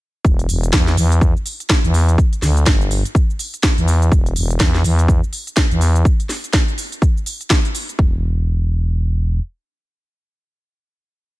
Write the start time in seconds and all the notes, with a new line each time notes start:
0.25 E1, kick, shaker
0.39 closed hi-hat, shaker
0.49 E1, open hi-hat, shaker
0.63 closed hi-hat, shaker
0.73 E2, kick, snare, shaker
0.87 snare, closed hi-hat, shaker
0.97 E2, open hi-hat, shaker
1.12 closed hi-hat, shaker
1.21 kick, shaker
1.37 shaker
1.46 open hi-hat, shaker
1.60 closed hi-hat, shaker
1.70 kick, snare, shaker
1.84 E2, closed hi-hat, shaker
1.94 open hi-hat, shaker
2.09 closed hi-hat, shaker
2.18 kick, shaker
2.33 closed hi-hat, shaker
2.42 D2, snare, open hi-hat, shaker
2.57 closed hi-hat, shaker
2.66 G1, kick, snare, shaker
2.81 closed hi-hat, shaker
2.91 open hi-hat, shaker
3.05 closed hi-hat, shaker
3.15 kick, shaker
3.30 shaker
3.39 open hi-hat, shaker
3.54 closed hi-hat, shaker
3.63 kick, snare, shaker
3.78 E2, closed hi-hat, shaker
3.88 open hi-hat, shaker
4.02 closed hi-hat, shaker
4.12 E1, kick, shaker
4.26 closed hi-hat, shaker
4.36 E1, open hi-hat, shaker
4.50 closed hi-hat, shaker
4.60 E2, kick, snare, shaker
4.74 snare, closed hi-hat, shaker
4.84 E2, open hi-hat, shaker
4.99 closed hi-hat, shaker
5.08 kick, shaker
5.24 shaker
5.33 open hi-hat, shaker
5.47 closed hi-hat, shaker
5.57 kick, snare, shaker
5.71 E2, closed hi-hat, shaker
5.81 open hi-hat, shaker
5.96 closed hi-hat, shaker
6.05 kick, shaker
6.20 closed hi-hat, shaker
6.29 snare, open hi-hat, shaker
6.44 closed hi-hat, shaker
6.53 kick, snare, shaker
6.68 closed hi-hat, shaker
6.78 open hi-hat, shaker
6.92 closed hi-hat, shaker
7.02 kick, shaker
7.17 shaker
7.26 open hi-hat, shaker
7.41 closed hi-hat, shaker
7.50 kick, snare, shaker
7.65 closed hi-hat, shaker
7.75 open hi-hat, shaker
7.89 closed hi-hat, shaker
7.99 E1, kick